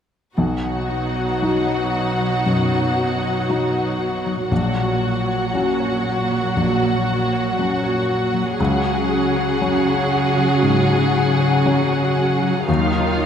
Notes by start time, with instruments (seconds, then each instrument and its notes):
0.37 grand piano B1, harp B2, cello section B2, viola section F#3 D#4, violin section F#4 F#5
0.63 harp B3
0.89 harp F#4
1.16 harp D#5
1.42 grand piano F#3 D#4 F#4, harp F#4
1.67 harp D#5
1.93 harp F#4
2.20 harp F#3
2.46 grand piano F#2, harp B2
2.71 harp B3
2.96 harp F#4
3.22 harp D#5
3.48 grand piano F#3 D#4 F#4, harp F#4
3.73 harp D#5
3.99 harp F#4
4.26 harp F#3
4.49 grand piano A#1, cello section A#2, harp A#2, viola section F#3 F#4, violin section F#4 F#5
4.77 harp A#3
5.28 harp C#5
5.54 grand piano F#3 C#4 F#4
5.80 harp C#5
6.31 harp F#3
6.56 grand piano A#1, harp A#2
6.82 harp A#3
7.33 harp C#5
7.59 grand piano F#3 C#4 F#4
7.83 harp C#5
8.33 harp F#3
8.58 grand piano C#2, cello section C#3, harp C#3, viola section F#3 F#4, violin section G#4 F#5
8.85 harp C#4
9.10 harp G#4
9.36 harp C#5
9.61 grand piano F#3 C#4 F#4
9.87 harp C#5
10.37 harp F#3
10.62 grand piano G#2, harp C#3
10.89 harp C#4
11.40 harp C#5
11.66 grand piano F#3 C#4 F#4
11.92 harp C#5
12.43 harp F#3
12.68 grand piano D#2, cello section D#3, harp D#3, viola section F#3 D#4, violin section F4 F5
12.94 harp D#4
13.19 harp F4